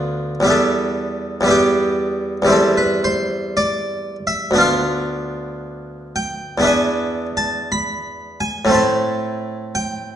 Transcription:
Already playing: D2 D3 B3 F4 B4
0.40 E2 G3
0.45 B3 E4
0.50 A4
1.41 E2 G3
1.46 B3 E4
1.51 G4
2.42 E2 G3
2.47 C4 E4
2.52 A4
2.77 B4
3.04 C5
3.57 D5
4.27 E5
4.51 D2 B3
4.56 D4 F4
4.61 F5
6.16 G5
6.58 E2 B3
6.62 D4 E4
6.67 G#5
7.37 A5
7.72 B5
8.40 G#5
8.65 A2 A3
8.69 C4 E4
8.74 A5
9.75 G5

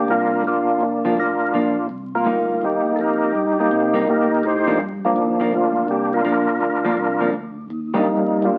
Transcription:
Already playing: A#3 G4
0.08 C2 D4 F4 A#4
0.44 A#1 A#3 D4 F4
0.81 F1 D4
1.05 F3 A#3 D4 F4
1.17 A1 D4 F4 A#4
1.54 A#1 F3 A#3 D4
1.89 C2
2.15 A#3 F4
2.25 D2 G3 A#3 D#4
2.62 D#2 A#3 D#4 G4
2.86 D#2
2.96 F2 A4
3.00 D#4 G4 A#4
3.35 G2
3.59 A#3 D#4 G4
3.71 C3
3.94 G3 A#3 D#4
4.08 A#2 D#4 G4 A#4
4.43 A2 D#4 G4 C5
4.67 F3 A#3 D4
4.80 G2
5.05 F3 A#3 D4
5.16 D#2
5.40 F3 A#3 D4
5.52 D2 A#3 D4 F4
5.88 C2 G4
6.13 D4 F4 A#4
6.25 A#1 F3 A#3 D4
6.60 D2
6.85 F3 A#3 D4
6.97 C2
7.21 F3 A#3 D4
7.33 D2
7.70 D#2
7.94 D#3 G3 A#3 D4 D#4
8.07 F2
8.42 G2 A#3 D4 F4

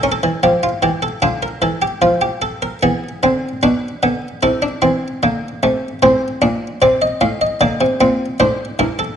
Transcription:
0.03 C#4 A#4
0.12 A4
0.23 E3
0.43 F3 G4
0.63 F4
0.82 E3 G4
1.02 A4
1.22 D3 D4 F4
1.43 A#4
1.62 E3 A4
1.82 G4
2.02 F3 F4
2.21 G4
2.42 A4
2.62 A#4
2.83 E3 B3 G#4
3.23 D3 C4
3.63 B2 D4 B4
4.03 D3 B3
4.43 C3 E4 A4
4.62 D4
4.82 E3 C4
5.23 D3 A#3
5.63 C3 A3
6.03 A2 C4 C5
6.42 A#2 D4
6.82 C3 C4 D5
7.02 D#5
7.21 A2 F5
7.41 D#5
7.61 D3 A#3 D5
7.81 C3
8.01 A#2 C4
8.40 A2 D4 C5
8.79 G2 E4 A#4
8.99 A4

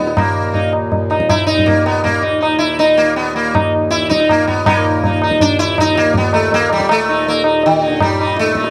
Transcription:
Already playing: D#2 A#2 B3
0.07 tabla te
0.15 D#2 A#2 A#3, tabla na, tabla ge
0.54 D#4, tabla tin, tabla ge
0.73 tabla na
0.92 tabla tin, tabla ge
1.10 D#4, tabla na
1.20 tabla ke
1.29 E4, tabla na, tabla ge
1.46 D#4, tabla te
1.59 tabla ge
1.66 A#3, tabla tin, tabla ge
1.86 B3, tabla na
2.04 A#3, tabla tin, tabla ge
2.22 D#4
2.41 D#4, tabla na
2.59 E4
2.79 D#4, tabla tin
2.97 A#3
3.16 B3, tabla tin
3.36 A#3
3.54 D#4, tabla na, tabla ge
3.90 E4, tabla te
4.02 tabla te
4.10 D#4, tabla ke
4.20 tabla te
4.29 A#3, tabla na, tabla ge
4.47 B3, tabla ge
4.66 D#2 A#2 A#3 D#4, tabla na, tabla ge
5.04 D#4, tabla tin, tabla ge
5.22 D#4, tabla na
5.31 tabla ke
5.40 D4, tabla tin, tabla ge
5.59 E4
5.78 D#4, tabla na, tabla ge
5.96 A#3, tabla te
6.14 B3, tabla tin, tabla ge
6.33 A3, tabla na
6.52 A#3, tabla tin, tabla ge
6.70 G3, tabla na
6.80 tabla ke
6.89 A3, tabla na
7.09 D#4
7.26 A#3, tabla tin
7.44 D#4, tabla na
7.63 D#3, tabla tin
7.82 D3 D#4
8.00 G3, tabla na, tabla ge
8.20 D#4
8.37 A3, tabla te
8.45 tabla te
8.55 D#4, tabla ke
8.64 tabla te

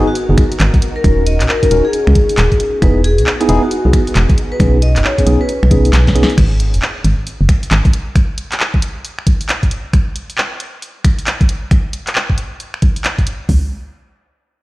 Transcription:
Already playing: B3 D#4 F#4 A#4
0.07 F#4
0.15 closed hi-hat
0.29 F#1 B3 D#4 F#4 G#4
0.38 finger snap, kick, closed hi-hat
0.52 closed hi-hat
0.60 G#1, clap, closed hi-hat
0.74 kick, closed hi-hat
0.82 C#4 D#4, closed hi-hat
0.96 A#4
1.04 D#1 C#4 D#4 F#4 A#4, finger snap, kick, closed hi-hat
1.26 D#5, closed hi-hat
1.40 A#1, clap, closed hi-hat
1.49 A#4, clap
1.63 C#4 D#4 F#4 A#4, kick, closed hi-hat
1.71 D#1 C#4 D#4 F#4 A#4, closed hi-hat
1.85 G#4
1.93 closed hi-hat
2.07 C#2, finger snap
2.15 kick, closed hi-hat
2.29 closed hi-hat
2.38 D#1, clap, closed hi-hat
2.52 kick, closed hi-hat
2.59 B3 D#4 F#4 G#4, closed hi-hat
2.82 E1 B3 D#4 E4 G#4 B4, finger snap, kick, closed hi-hat
3.04 G#4, closed hi-hat
3.18 B1, closed hi-hat
3.27 clap
3.41 B3 D#4 E4 G#4, closed hi-hat
3.49 E1 B3 D#4 E4 G#4, closed hi-hat
3.63 F#4
3.71 closed hi-hat
3.85 B1 B3 D#4 E4 G#4
3.93 finger snap, kick, closed hi-hat
4.07 closed hi-hat
4.16 E1, clap, closed hi-hat
4.29 kick, closed hi-hat
4.38 closed hi-hat
4.52 B4
4.60 B1 B3 C#4 D#4 G#4, finger snap, kick, closed hi-hat
4.82 D#5, closed hi-hat
4.96 F#1, clap, closed hi-hat
5.04 C#5, clap
5.18 B3 C#4 D#4 G#4, kick, closed hi-hat
5.26 B1 B3 C#4 D#4 G#4, closed hi-hat
5.41 B4
5.49 closed hi-hat
5.63 B1, finger snap
5.71 B3 C#4 D#4 G#4, kick, closed hi-hat
5.85 closed hi-hat
5.93 B1, snare, clap, closed hi-hat
6.07 kick, snare, closed hi-hat
6.15 B3 C#4 D#4 G#4, closed hi-hat
6.23 snare
6.30 closed hi-hat
6.38 G#1, finger snap, kick, closed hi-hat, crash
6.60 closed hi-hat
6.74 D#1, closed hi-hat
6.82 clap
7.04 G#1, closed hi-hat
7.27 closed hi-hat
7.41 F#1
7.49 finger snap, kick, closed hi-hat
7.63 closed hi-hat
7.71 G#1, clap, closed hi-hat
7.85 kick, closed hi-hat
7.93 closed hi-hat
8.15 finger snap, kick, closed hi-hat
8.38 closed hi-hat
8.52 clap, closed hi-hat
8.60 clap
8.74 kick
8.82 closed hi-hat
9.05 closed hi-hat
9.19 finger snap
9.27 kick, closed hi-hat
9.41 closed hi-hat
9.49 clap, closed hi-hat
9.63 kick, closed hi-hat
9.71 closed hi-hat
9.93 finger snap, kick, closed hi-hat
10.16 closed hi-hat
10.30 closed hi-hat
10.38 clap
10.60 closed hi-hat
10.82 closed hi-hat
11.04 finger snap, kick, closed hi-hat
11.19 closed hi-hat
11.27 clap, closed hi-hat
11.41 kick, closed hi-hat
11.49 closed hi-hat
11.71 finger snap, kick, closed hi-hat
11.93 closed hi-hat
12.07 clap, closed hi-hat
12.15 clap
12.30 kick
12.38 closed hi-hat
12.60 closed hi-hat
12.74 finger snap
12.82 kick, closed hi-hat
12.96 closed hi-hat
13.04 clap, closed hi-hat
13.18 kick, closed hi-hat
13.27 closed hi-hat
13.49 kick, floor tom, open hi-hat

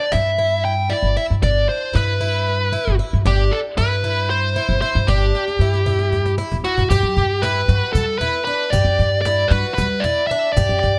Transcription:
0.00 D5
0.12 G2 E4 E5, cajon slap
0.39 E4, cajon slap
0.65 G5, cajon slap
0.90 E4 D5, cajon slap
1.03 G1
1.17 E4 E5, cajon slap
1.30 G2
1.43 G1 D4 D5, cajon bass
1.69 C5, cajon slap
1.93 G2 E4 B4, cajon slap
2.21 E4, cajon slap
2.48 cajon slap
2.73 E4, cajon slap
2.87 G1
2.99 E4, cajon slap
3.13 G2
3.25 G1 D4 G4, cajon bass
3.51 A4, cajon slap
3.77 G2 E4 B4, cajon slap
4.04 E4, cajon slap
4.30 C5, cajon slap
4.56 E4, cajon slap
4.69 G1
4.81 E4 C5, cajon slap
4.95 G2
5.08 G1 D4 G4, cajon bass
5.35 cajon slap
5.48 cajon slap
5.59 G2 E4, cajon slap
5.74 cajon slap
5.86 E4, cajon bass
5.99 cajon slap
6.12 cajon bass, cajon slap
6.26 cajon slap
6.38 E4, cajon slap
6.52 G1, cajon bass
6.64 E4 F#4, cajon slap
6.78 G2, cajon bass
6.90 G2 G4, cajon bass, shaker
7.03 F#2
7.17 G2, cajon bass
7.42 E4 B4, cajon slap, shaker
7.68 G2 F#4, cajon slap, shaker
7.93 G3 A4, cajon bass, shaker
8.18 E4 B4, cajon bass, shaker
8.44 D4 B4, cajon slap
8.70 G2 G4 D5, cajon bass, shaker
8.84 F#2
8.99 G2, cajon bass
9.21 D5, cajon slap, shaker
9.26 E4
9.48 G2 F#4 B4, shaker
9.74 B4, cajon bass, shaker
9.78 G3
10.00 E4 D5, cajon bass, shaker
10.27 E5, cajon slap
10.31 D4
10.53 D5
10.57 G2 G4, cajon bass, shaker
10.69 F#2
10.79 D5, cajon bass
10.83 G2

